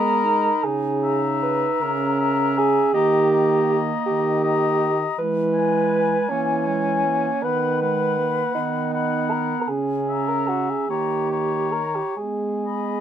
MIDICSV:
0, 0, Header, 1, 6, 480
1, 0, Start_track
1, 0, Tempo, 779221
1, 392, Time_signature, 6, 3, 24, 8
1, 1352, Tempo, 744417
1, 3752, Tempo, 754717
1, 6152, Tempo, 806452
1, 7112, Tempo, 867052
1, 7592, Tempo, 953895
1, 8011, End_track
2, 0, Start_track
2, 0, Title_t, "Flute"
2, 0, Program_c, 0, 73
2, 0, Note_on_c, 0, 83, 47
2, 385, Note_off_c, 0, 83, 0
2, 635, Note_on_c, 0, 82, 44
2, 1339, Note_off_c, 0, 82, 0
2, 1359, Note_on_c, 0, 82, 48
2, 1829, Note_off_c, 0, 82, 0
2, 1839, Note_on_c, 0, 82, 46
2, 2071, Note_off_c, 0, 82, 0
2, 2082, Note_on_c, 0, 82, 47
2, 2792, Note_off_c, 0, 82, 0
2, 2815, Note_on_c, 0, 82, 48
2, 3274, Note_off_c, 0, 82, 0
2, 3520, Note_on_c, 0, 80, 48
2, 4223, Note_off_c, 0, 80, 0
2, 4245, Note_on_c, 0, 80, 40
2, 4711, Note_off_c, 0, 80, 0
2, 4721, Note_on_c, 0, 83, 45
2, 4955, Note_off_c, 0, 83, 0
2, 4969, Note_on_c, 0, 83, 45
2, 5661, Note_off_c, 0, 83, 0
2, 5677, Note_on_c, 0, 83, 36
2, 6145, Note_off_c, 0, 83, 0
2, 6399, Note_on_c, 0, 82, 37
2, 6862, Note_off_c, 0, 82, 0
2, 6867, Note_on_c, 0, 82, 34
2, 7107, Note_off_c, 0, 82, 0
2, 7119, Note_on_c, 0, 82, 33
2, 7585, Note_off_c, 0, 82, 0
2, 7838, Note_on_c, 0, 83, 33
2, 8011, Note_off_c, 0, 83, 0
2, 8011, End_track
3, 0, Start_track
3, 0, Title_t, "Oboe"
3, 0, Program_c, 1, 68
3, 0, Note_on_c, 1, 75, 53
3, 383, Note_off_c, 1, 75, 0
3, 637, Note_on_c, 1, 76, 55
3, 1340, Note_off_c, 1, 76, 0
3, 1356, Note_on_c, 1, 76, 52
3, 1827, Note_off_c, 1, 76, 0
3, 1832, Note_on_c, 1, 75, 52
3, 2067, Note_off_c, 1, 75, 0
3, 2076, Note_on_c, 1, 75, 48
3, 2789, Note_off_c, 1, 75, 0
3, 2798, Note_on_c, 1, 75, 55
3, 3265, Note_off_c, 1, 75, 0
3, 3506, Note_on_c, 1, 80, 47
3, 4216, Note_off_c, 1, 80, 0
3, 4226, Note_on_c, 1, 80, 51
3, 4701, Note_off_c, 1, 80, 0
3, 4720, Note_on_c, 1, 78, 44
3, 4954, Note_off_c, 1, 78, 0
3, 4964, Note_on_c, 1, 78, 44
3, 5658, Note_off_c, 1, 78, 0
3, 5672, Note_on_c, 1, 78, 45
3, 6142, Note_off_c, 1, 78, 0
3, 6390, Note_on_c, 1, 76, 36
3, 6857, Note_off_c, 1, 76, 0
3, 6872, Note_on_c, 1, 73, 34
3, 7109, Note_off_c, 1, 73, 0
3, 7126, Note_on_c, 1, 73, 41
3, 7589, Note_off_c, 1, 73, 0
3, 7837, Note_on_c, 1, 75, 38
3, 8011, Note_off_c, 1, 75, 0
3, 8011, End_track
4, 0, Start_track
4, 0, Title_t, "Bassoon"
4, 0, Program_c, 2, 70
4, 0, Note_on_c, 2, 70, 93
4, 396, Note_on_c, 2, 68, 72
4, 405, Note_off_c, 2, 70, 0
4, 774, Note_off_c, 2, 68, 0
4, 878, Note_on_c, 2, 71, 73
4, 1117, Note_on_c, 2, 70, 72
4, 1126, Note_off_c, 2, 71, 0
4, 1597, Note_off_c, 2, 70, 0
4, 1601, Note_on_c, 2, 68, 85
4, 1833, Note_on_c, 2, 67, 87
4, 1843, Note_off_c, 2, 68, 0
4, 2385, Note_off_c, 2, 67, 0
4, 2558, Note_on_c, 2, 67, 69
4, 3249, Note_off_c, 2, 67, 0
4, 3283, Note_on_c, 2, 71, 86
4, 3994, Note_on_c, 2, 61, 75
4, 4004, Note_off_c, 2, 71, 0
4, 4715, Note_on_c, 2, 71, 74
4, 4725, Note_off_c, 2, 61, 0
4, 5424, Note_off_c, 2, 71, 0
4, 5428, Note_on_c, 2, 63, 60
4, 5909, Note_on_c, 2, 70, 68
4, 5919, Note_off_c, 2, 63, 0
4, 6100, Note_off_c, 2, 70, 0
4, 6104, Note_on_c, 2, 70, 38
4, 6150, Note_on_c, 2, 68, 54
4, 6159, Note_off_c, 2, 70, 0
4, 6507, Note_on_c, 2, 70, 57
4, 6516, Note_off_c, 2, 68, 0
4, 6622, Note_on_c, 2, 66, 57
4, 6631, Note_off_c, 2, 70, 0
4, 6750, Note_on_c, 2, 68, 51
4, 6759, Note_off_c, 2, 66, 0
4, 6873, Note_on_c, 2, 67, 58
4, 6881, Note_off_c, 2, 68, 0
4, 7344, Note_on_c, 2, 70, 57
4, 7352, Note_off_c, 2, 67, 0
4, 7473, Note_on_c, 2, 67, 50
4, 7481, Note_off_c, 2, 70, 0
4, 7588, Note_off_c, 2, 67, 0
4, 7592, Note_on_c, 2, 68, 51
4, 8011, Note_off_c, 2, 68, 0
4, 8011, End_track
5, 0, Start_track
5, 0, Title_t, "Clarinet"
5, 0, Program_c, 3, 71
5, 0, Note_on_c, 3, 59, 61
5, 150, Note_on_c, 3, 63, 64
5, 159, Note_off_c, 3, 59, 0
5, 1124, Note_on_c, 3, 61, 63
5, 1133, Note_off_c, 3, 63, 0
5, 1831, Note_off_c, 3, 61, 0
5, 1835, Note_on_c, 3, 58, 61
5, 3082, Note_off_c, 3, 58, 0
5, 3278, Note_on_c, 3, 56, 65
5, 3968, Note_off_c, 3, 56, 0
5, 3993, Note_on_c, 3, 58, 54
5, 4227, Note_on_c, 3, 56, 52
5, 4236, Note_off_c, 3, 58, 0
5, 4474, Note_on_c, 3, 58, 49
5, 4484, Note_off_c, 3, 56, 0
5, 4715, Note_on_c, 3, 59, 52
5, 4725, Note_off_c, 3, 58, 0
5, 4962, Note_on_c, 3, 56, 47
5, 4972, Note_off_c, 3, 59, 0
5, 5189, Note_on_c, 3, 58, 49
5, 5199, Note_off_c, 3, 56, 0
5, 5430, Note_on_c, 3, 59, 60
5, 5440, Note_off_c, 3, 58, 0
5, 6149, Note_off_c, 3, 59, 0
5, 6153, Note_on_c, 3, 61, 59
5, 6851, Note_off_c, 3, 61, 0
5, 6864, Note_on_c, 3, 58, 44
5, 7402, Note_off_c, 3, 58, 0
5, 7594, Note_on_c, 3, 59, 43
5, 8011, Note_off_c, 3, 59, 0
5, 8011, End_track
6, 0, Start_track
6, 0, Title_t, "French horn"
6, 0, Program_c, 4, 60
6, 0, Note_on_c, 4, 56, 64
6, 310, Note_off_c, 4, 56, 0
6, 403, Note_on_c, 4, 49, 64
6, 1036, Note_off_c, 4, 49, 0
6, 1119, Note_on_c, 4, 49, 66
6, 1753, Note_off_c, 4, 49, 0
6, 1835, Note_on_c, 4, 51, 70
6, 2474, Note_off_c, 4, 51, 0
6, 2572, Note_on_c, 4, 51, 67
6, 3199, Note_off_c, 4, 51, 0
6, 3286, Note_on_c, 4, 52, 67
6, 3912, Note_off_c, 4, 52, 0
6, 4005, Note_on_c, 4, 52, 60
6, 4635, Note_off_c, 4, 52, 0
6, 4723, Note_on_c, 4, 51, 58
6, 5354, Note_off_c, 4, 51, 0
6, 5430, Note_on_c, 4, 51, 57
6, 6062, Note_off_c, 4, 51, 0
6, 6153, Note_on_c, 4, 49, 56
6, 6780, Note_off_c, 4, 49, 0
6, 6866, Note_on_c, 4, 51, 51
6, 7503, Note_off_c, 4, 51, 0
6, 7598, Note_on_c, 4, 56, 47
6, 8011, Note_off_c, 4, 56, 0
6, 8011, End_track
0, 0, End_of_file